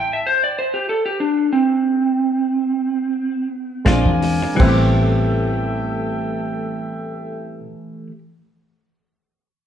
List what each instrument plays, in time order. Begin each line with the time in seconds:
Already playing: electric slide guitar G5
0.13 electric slide guitar E5
0.27 electric slide guitar C5
0.44 electric slide guitar D5
0.59 electric slide guitar C5
0.74 electric slide guitar G4
0.89 electric slide guitar A4
1.06 electric slide guitar G4
1.20 electric slide guitar D4
1.53 electric slide guitar C4
3.85 fingered electric bass A#1, clean electric guitar F3 G#3 D4 F4, reed electric piano G#3 C4 D4 F4, horn section A#4 D5 G#5, kick, snare, closed hi-hat
4.06 fingered electric bass E2, kick
4.22 muted clean electric guitar stroke, open hi-hat
4.42 muted clean electric guitar stroke
4.55 clean electric guitar E3, reed electric piano G3 B3
4.60 fingered electric bass A1, clean electric guitar A3, reed electric piano C4 E4, horn section A4 E5 G5, kick, crash
4.68 clean electric guitar G4